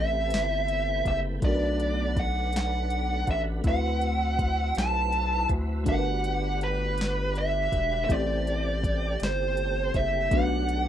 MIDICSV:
0, 0, Header, 1, 6, 480
1, 0, Start_track
1, 0, Tempo, 740741
1, 922, Time_signature, 6, 3, 24, 8
1, 7052, End_track
2, 0, Start_track
2, 0, Title_t, "Lead electric guitar"
2, 0, Program_c, 0, 29
2, 0, Note_on_c, 0, 76, 94
2, 692, Note_off_c, 0, 76, 0
2, 700, Note_on_c, 0, 76, 91
2, 762, Note_off_c, 0, 76, 0
2, 938, Note_on_c, 0, 74, 104
2, 1422, Note_on_c, 0, 78, 85
2, 1424, Note_off_c, 0, 74, 0
2, 1659, Note_off_c, 0, 78, 0
2, 1666, Note_on_c, 0, 78, 93
2, 2108, Note_off_c, 0, 78, 0
2, 2143, Note_on_c, 0, 76, 81
2, 2205, Note_off_c, 0, 76, 0
2, 2382, Note_on_c, 0, 78, 97
2, 3099, Note_off_c, 0, 78, 0
2, 3101, Note_on_c, 0, 81, 90
2, 3546, Note_off_c, 0, 81, 0
2, 3816, Note_on_c, 0, 78, 106
2, 4263, Note_off_c, 0, 78, 0
2, 4300, Note_on_c, 0, 71, 94
2, 4780, Note_on_c, 0, 76, 113
2, 4785, Note_off_c, 0, 71, 0
2, 5205, Note_off_c, 0, 76, 0
2, 5213, Note_on_c, 0, 76, 69
2, 5250, Note_off_c, 0, 76, 0
2, 5266, Note_on_c, 0, 74, 100
2, 5948, Note_off_c, 0, 74, 0
2, 5987, Note_on_c, 0, 72, 85
2, 6455, Note_on_c, 0, 76, 90
2, 6469, Note_off_c, 0, 72, 0
2, 6695, Note_on_c, 0, 78, 98
2, 6696, Note_off_c, 0, 76, 0
2, 7052, Note_off_c, 0, 78, 0
2, 7052, End_track
3, 0, Start_track
3, 0, Title_t, "FM electric piano"
3, 0, Program_c, 1, 5
3, 0, Control_c, 1, 64, 127
3, 0, Note_on_c, 1, 57, 69
3, 0, Note_on_c, 1, 60, 54
3, 0, Note_on_c, 1, 64, 58
3, 0, Note_on_c, 1, 67, 57
3, 0, Note_on_c, 1, 71, 75
3, 886, Note_off_c, 1, 57, 0
3, 893, Note_off_c, 1, 60, 0
3, 898, Note_off_c, 1, 64, 0
3, 905, Note_off_c, 1, 67, 0
3, 908, Note_on_c, 1, 57, 70
3, 912, Note_off_c, 1, 71, 0
3, 922, Note_on_c, 1, 59, 62
3, 929, Control_c, 1, 64, 0
3, 934, Note_on_c, 1, 62, 59
3, 947, Note_on_c, 1, 66, 57
3, 960, Note_on_c, 1, 70, 62
3, 983, Note_off_c, 1, 70, 0
3, 1001, Note_on_c, 1, 71, 75
3, 1030, Control_c, 1, 64, 127
3, 2329, Note_off_c, 1, 57, 0
3, 2336, Note_off_c, 1, 59, 0
3, 2342, Note_off_c, 1, 62, 0
3, 2342, Note_on_c, 1, 57, 69
3, 2349, Note_off_c, 1, 66, 0
3, 2355, Note_on_c, 1, 60, 59
3, 2369, Control_c, 1, 64, 0
3, 2369, Note_on_c, 1, 64, 60
3, 2376, Note_off_c, 1, 71, 0
3, 2379, Note_on_c, 1, 66, 54
3, 2393, Note_on_c, 1, 71, 75
3, 2482, Control_c, 1, 64, 127
3, 3766, Note_off_c, 1, 57, 0
3, 3773, Note_off_c, 1, 60, 0
3, 3780, Note_off_c, 1, 64, 0
3, 3784, Note_off_c, 1, 66, 0
3, 3784, Note_on_c, 1, 57, 68
3, 3791, Note_off_c, 1, 71, 0
3, 3793, Note_on_c, 1, 62, 58
3, 3808, Note_on_c, 1, 66, 55
3, 3809, Control_c, 1, 64, 0
3, 3821, Note_on_c, 1, 67, 56
3, 3833, Note_on_c, 1, 70, 62
3, 3859, Note_off_c, 1, 70, 0
3, 3876, Note_on_c, 1, 71, 68
3, 3916, Control_c, 1, 64, 127
3, 5207, Note_off_c, 1, 57, 0
3, 5212, Note_off_c, 1, 62, 0
3, 5219, Note_off_c, 1, 66, 0
3, 5225, Note_on_c, 1, 57, 71
3, 5226, Note_off_c, 1, 67, 0
3, 5236, Note_on_c, 1, 60, 58
3, 5249, Control_c, 1, 64, 0
3, 5251, Note_on_c, 1, 64, 57
3, 5253, Note_off_c, 1, 71, 0
3, 5263, Note_on_c, 1, 67, 61
3, 5274, Note_on_c, 1, 72, 76
3, 5348, Control_c, 1, 64, 127
3, 6648, Note_off_c, 1, 57, 0
3, 6653, Note_off_c, 1, 60, 0
3, 6660, Note_off_c, 1, 64, 0
3, 6666, Note_off_c, 1, 67, 0
3, 6670, Note_on_c, 1, 57, 68
3, 6672, Note_off_c, 1, 72, 0
3, 6683, Note_on_c, 1, 59, 61
3, 6691, Control_c, 1, 64, 0
3, 6696, Note_on_c, 1, 62, 60
3, 6706, Note_on_c, 1, 66, 57
3, 6719, Note_on_c, 1, 71, 68
3, 6812, Control_c, 1, 64, 127
3, 7052, Note_off_c, 1, 57, 0
3, 7052, Note_off_c, 1, 59, 0
3, 7052, Note_off_c, 1, 62, 0
3, 7052, Note_off_c, 1, 66, 0
3, 7052, Note_off_c, 1, 71, 0
3, 7052, End_track
4, 0, Start_track
4, 0, Title_t, "Tonewheel organ"
4, 0, Program_c, 2, 16
4, 0, Note_on_c, 2, 48, 61
4, 0, Note_on_c, 2, 57, 61
4, 0, Note_on_c, 2, 67, 78
4, 0, Note_on_c, 2, 71, 60
4, 905, Note_off_c, 2, 48, 0
4, 906, Note_off_c, 2, 57, 0
4, 907, Note_off_c, 2, 67, 0
4, 920, Note_on_c, 2, 66, 72
4, 921, Note_on_c, 2, 50, 69
4, 922, Note_on_c, 2, 57, 67
4, 2347, Note_off_c, 2, 50, 0
4, 2347, Note_off_c, 2, 66, 0
4, 2348, Note_off_c, 2, 57, 0
4, 2357, Note_on_c, 2, 54, 56
4, 2359, Note_on_c, 2, 64, 72
4, 2360, Note_on_c, 2, 60, 64
4, 3785, Note_off_c, 2, 54, 0
4, 3786, Note_off_c, 2, 64, 0
4, 3787, Note_off_c, 2, 60, 0
4, 3796, Note_on_c, 2, 50, 62
4, 3797, Note_on_c, 2, 78, 75
4, 3799, Note_on_c, 2, 55, 56
4, 5214, Note_off_c, 2, 71, 0
4, 5225, Note_off_c, 2, 50, 0
4, 5225, Note_off_c, 2, 78, 0
4, 5226, Note_off_c, 2, 55, 0
4, 5238, Note_on_c, 2, 55, 66
4, 5238, Note_on_c, 2, 57, 66
4, 5239, Note_on_c, 2, 48, 68
4, 5240, Note_on_c, 2, 67, 83
4, 6666, Note_off_c, 2, 48, 0
4, 6666, Note_off_c, 2, 67, 0
4, 6682, Note_on_c, 2, 66, 74
4, 6684, Note_on_c, 2, 50, 63
4, 7052, Note_off_c, 2, 50, 0
4, 7052, Note_off_c, 2, 55, 0
4, 7052, Note_off_c, 2, 57, 0
4, 7052, Note_off_c, 2, 66, 0
4, 7052, End_track
5, 0, Start_track
5, 0, Title_t, "Analog synth bass"
5, 0, Program_c, 3, 38
5, 0, Note_on_c, 3, 33, 96
5, 215, Note_on_c, 3, 31, 95
5, 225, Note_off_c, 3, 33, 0
5, 663, Note_off_c, 3, 31, 0
5, 690, Note_on_c, 3, 30, 91
5, 902, Note_off_c, 3, 30, 0
5, 929, Note_on_c, 3, 35, 103
5, 2099, Note_off_c, 3, 35, 0
5, 2128, Note_on_c, 3, 33, 94
5, 2341, Note_off_c, 3, 33, 0
5, 2369, Note_on_c, 3, 38, 104
5, 3060, Note_off_c, 3, 38, 0
5, 3094, Note_on_c, 3, 35, 97
5, 3542, Note_off_c, 3, 35, 0
5, 3569, Note_on_c, 3, 38, 93
5, 3808, Note_on_c, 3, 31, 107
5, 3818, Note_off_c, 3, 38, 0
5, 4979, Note_off_c, 3, 31, 0
5, 5011, Note_on_c, 3, 28, 99
5, 5223, Note_off_c, 3, 28, 0
5, 5251, Note_on_c, 3, 33, 105
5, 5941, Note_off_c, 3, 33, 0
5, 5974, Note_on_c, 3, 31, 95
5, 6422, Note_off_c, 3, 31, 0
5, 6451, Note_on_c, 3, 30, 89
5, 6663, Note_off_c, 3, 30, 0
5, 6690, Note_on_c, 3, 35, 107
5, 7052, Note_off_c, 3, 35, 0
5, 7052, End_track
6, 0, Start_track
6, 0, Title_t, "Drums"
6, 197, Note_on_c, 9, 42, 59
6, 220, Note_on_c, 9, 38, 105
6, 262, Note_off_c, 9, 42, 0
6, 285, Note_off_c, 9, 38, 0
6, 443, Note_on_c, 9, 42, 50
6, 508, Note_off_c, 9, 42, 0
6, 683, Note_on_c, 9, 36, 84
6, 684, Note_on_c, 9, 42, 49
6, 748, Note_off_c, 9, 36, 0
6, 749, Note_off_c, 9, 42, 0
6, 921, Note_on_c, 9, 42, 70
6, 922, Note_on_c, 9, 36, 125
6, 986, Note_off_c, 9, 42, 0
6, 987, Note_off_c, 9, 36, 0
6, 1164, Note_on_c, 9, 42, 52
6, 1229, Note_off_c, 9, 42, 0
6, 1403, Note_on_c, 9, 36, 110
6, 1404, Note_on_c, 9, 42, 46
6, 1468, Note_off_c, 9, 36, 0
6, 1469, Note_off_c, 9, 42, 0
6, 1637, Note_on_c, 9, 42, 61
6, 1660, Note_on_c, 9, 38, 100
6, 1702, Note_off_c, 9, 42, 0
6, 1725, Note_off_c, 9, 38, 0
6, 1881, Note_on_c, 9, 42, 47
6, 1946, Note_off_c, 9, 42, 0
6, 2120, Note_on_c, 9, 42, 47
6, 2121, Note_on_c, 9, 36, 89
6, 2185, Note_off_c, 9, 42, 0
6, 2186, Note_off_c, 9, 36, 0
6, 2358, Note_on_c, 9, 42, 77
6, 2360, Note_on_c, 9, 36, 109
6, 2423, Note_off_c, 9, 42, 0
6, 2425, Note_off_c, 9, 36, 0
6, 2602, Note_on_c, 9, 42, 54
6, 2666, Note_off_c, 9, 42, 0
6, 2843, Note_on_c, 9, 36, 103
6, 2845, Note_on_c, 9, 42, 46
6, 2908, Note_off_c, 9, 36, 0
6, 2910, Note_off_c, 9, 42, 0
6, 3077, Note_on_c, 9, 42, 58
6, 3100, Note_on_c, 9, 38, 105
6, 3142, Note_off_c, 9, 42, 0
6, 3165, Note_off_c, 9, 38, 0
6, 3321, Note_on_c, 9, 42, 49
6, 3386, Note_off_c, 9, 42, 0
6, 3559, Note_on_c, 9, 42, 47
6, 3561, Note_on_c, 9, 36, 90
6, 3624, Note_off_c, 9, 42, 0
6, 3625, Note_off_c, 9, 36, 0
6, 3798, Note_on_c, 9, 42, 81
6, 3800, Note_on_c, 9, 36, 110
6, 3863, Note_off_c, 9, 42, 0
6, 3865, Note_off_c, 9, 36, 0
6, 4044, Note_on_c, 9, 42, 50
6, 4108, Note_off_c, 9, 42, 0
6, 4284, Note_on_c, 9, 42, 52
6, 4349, Note_off_c, 9, 42, 0
6, 4521, Note_on_c, 9, 42, 56
6, 4544, Note_on_c, 9, 38, 102
6, 4586, Note_off_c, 9, 42, 0
6, 4609, Note_off_c, 9, 38, 0
6, 4766, Note_on_c, 9, 42, 48
6, 4831, Note_off_c, 9, 42, 0
6, 5004, Note_on_c, 9, 36, 87
6, 5007, Note_on_c, 9, 42, 50
6, 5069, Note_off_c, 9, 36, 0
6, 5071, Note_off_c, 9, 42, 0
6, 5244, Note_on_c, 9, 36, 113
6, 5248, Note_on_c, 9, 42, 77
6, 5309, Note_off_c, 9, 36, 0
6, 5313, Note_off_c, 9, 42, 0
6, 5490, Note_on_c, 9, 42, 50
6, 5555, Note_off_c, 9, 42, 0
6, 5726, Note_on_c, 9, 36, 107
6, 5730, Note_on_c, 9, 42, 53
6, 5791, Note_off_c, 9, 36, 0
6, 5795, Note_off_c, 9, 42, 0
6, 5960, Note_on_c, 9, 42, 56
6, 5983, Note_on_c, 9, 38, 105
6, 6025, Note_off_c, 9, 42, 0
6, 6048, Note_off_c, 9, 38, 0
6, 6202, Note_on_c, 9, 42, 46
6, 6267, Note_off_c, 9, 42, 0
6, 6442, Note_on_c, 9, 42, 49
6, 6444, Note_on_c, 9, 36, 95
6, 6507, Note_off_c, 9, 42, 0
6, 6509, Note_off_c, 9, 36, 0
6, 6683, Note_on_c, 9, 36, 121
6, 6683, Note_on_c, 9, 42, 75
6, 6747, Note_off_c, 9, 36, 0
6, 6748, Note_off_c, 9, 42, 0
6, 6925, Note_on_c, 9, 42, 50
6, 6990, Note_off_c, 9, 42, 0
6, 7052, End_track
0, 0, End_of_file